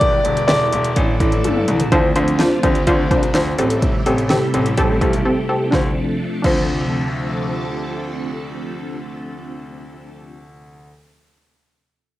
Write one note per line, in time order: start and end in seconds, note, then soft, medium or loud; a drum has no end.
0.00 0.11 E1 loud
0.00 1.88 D3 medium
0.00 0.93 G3 medium
0.00 0.95 B3 medium
0.00 1.90 E4 medium
0.00 0.93 G4 medium
0.00 0.46 D5 loud
0.00 kick loud
0.00 closed hi-hat medium
0.25 0.42 E1 medium
0.25 closed hi-hat medium
0.37 closed hi-hat soft
0.48 0.66 E1 loud
0.48 1.63 D5 medium
0.48 snare loud
0.48 closed hi-hat medium
0.73 0.89 E1 loud
0.73 closed hi-hat medium
0.84 closed hi-hat medium
0.96 1.13 A1 loud
0.96 1.91 E3 medium
0.96 1.91 A3 medium
0.96 1.91 A4 medium
0.96 kick medium
0.96 closed hi-hat medium
1.20 1.37 A1 loud
1.20 kick medium
1.20 closed hi-hat medium
1.32 closed hi-hat medium
1.44 1.61 G1 medium
1.44 closed hi-hat medium
1.44 high tom medium
1.56 mid tom medium
1.68 1.85 C2 medium
1.68 closed hi-hat medium
1.68 mid tom medium
1.80 closed hi-hat medium
1.80 floor tom medium
1.92 2.09 D2 loud
1.92 3.57 C3 medium
1.92 3.57 F3 medium
1.92 5.69 A3 medium
1.92 2.05 D4 loud
1.92 3.57 D4 medium
1.92 3.57 F4 medium
1.92 2.05 F4 loud
1.92 2.05 C5 loud
1.92 kick loud
1.92 closed hi-hat medium
2.16 2.41 D2 loud
2.16 2.29 D4 medium
2.16 2.29 F4 medium
2.16 2.29 C5 loud
2.16 closed hi-hat medium
2.28 closed hi-hat soft
2.39 2.53 D4 medium
2.39 2.53 F4 medium
2.39 2.53 C5 loud
2.39 snare loud
2.39 closed hi-hat medium
2.63 2.80 D2 medium
2.63 2.76 D4 medium
2.63 2.76 F4 medium
2.63 2.76 C5 loud
2.63 kick loud
2.63 closed hi-hat medium
2.75 closed hi-hat medium
2.87 3.04 D2 loud
2.87 3.00 D4 loud
2.87 3.00 F4 loud
2.87 3.00 C5 loud
2.87 kick medium
2.87 closed hi-hat medium
3.11 3.28 C2 medium
3.11 3.24 D4 medium
3.11 3.24 F4 medium
3.11 3.24 C5 loud
3.11 kick medium
3.11 closed hi-hat medium
3.23 closed hi-hat medium
3.34 3.51 D2 medium
3.34 3.48 D4 medium
3.34 3.48 F4 medium
3.34 3.48 C5 loud
3.34 snare loud
3.34 closed hi-hat medium
3.58 3.92 A1 loud
3.58 5.71 C3 medium
3.58 5.71 G3 medium
3.58 3.97 C4 medium
3.58 5.71 E4 medium
3.58 3.97 G4 medium
3.58 5.71 G4 medium
3.58 3.97 A4 loud
3.58 closed hi-hat medium
3.70 closed hi-hat medium
3.82 kick loud
3.82 closed hi-hat medium
4.06 4.31 A1 medium
4.06 4.19 C4 medium
4.06 4.19 G4 medium
4.06 4.19 A4 loud
4.06 closed hi-hat medium
4.18 closed hi-hat soft
4.30 4.43 C4 medium
4.30 4.43 G4 medium
4.30 4.43 A4 loud
4.30 snare loud
4.30 closed hi-hat medium
4.54 4.71 A1 loud
4.54 4.67 C4 medium
4.54 4.67 G4 medium
4.54 4.67 A4 loud
4.54 closed hi-hat medium
4.66 closed hi-hat soft
4.78 4.94 A1 medium
4.78 4.91 C4 loud
4.78 4.91 G4 loud
4.78 4.91 A4 loud
4.78 kick medium
4.78 closed hi-hat medium
5.01 5.18 B1 medium
5.01 5.14 C4 medium
5.01 5.14 G4 medium
5.01 5.14 A4 medium
5.01 kick medium
5.01 closed hi-hat medium
5.13 closed hi-hat medium
5.25 5.38 C4 medium
5.25 5.38 G4 medium
5.25 5.38 A4 loud
5.49 5.62 C4 medium
5.49 5.62 G4 medium
5.49 5.62 A4 loud
5.71 5.86 D2 medium
5.71 10.16 C3 medium
5.71 10.16 F3 medium
5.71 10.16 A3 medium
5.71 5.85 D4 medium
5.71 10.16 D4 medium
5.71 5.86 F4 medium
5.71 10.16 A4 medium
5.71 kick loud
5.71 snare medium
5.75 5.87 C5 medium
6.42 10.88 D2 medium
6.42 10.86 D4 medium
6.42 10.88 F4 medium
6.42 kick loud
6.42 crash medium
6.46 10.90 C5 medium